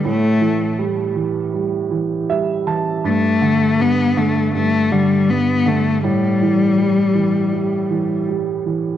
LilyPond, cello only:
\new Staff \with { instrumentName = "Cello" } { \time 4/4 \key a \dorian \tempo 4 = 80 a4 r2. | a4 b8 a8 a8 g8 b8 a8 | g2. r4 | }